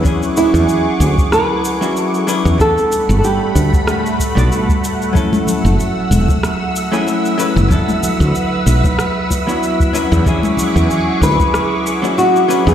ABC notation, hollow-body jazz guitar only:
X:1
M:4/4
L:1/16
Q:"Swing 16ths" 1/4=94
K:Emix
V:1 name="Hollow-body jazz guitar"
[F,CDEG]8- [F,CDEG]3 [F,CDEF]3 [F,CDEB]2 | [=G,B,DAf]8- [G,B,DAf]3 [G,B,DFd]4- [G,B,DFd] | [F,A,CEA]8- [F,A,CEA]3 [F,A,CEG]3 [F,A,CEB]2 | [F,B,DEA]8- [F,B,DEA]3 [F,B,DEF]3 [F,CDEB]2 |
[F,CDEG]8- [F,CDEG]3 [F,CDEF]3 [F,CDEB]2 |]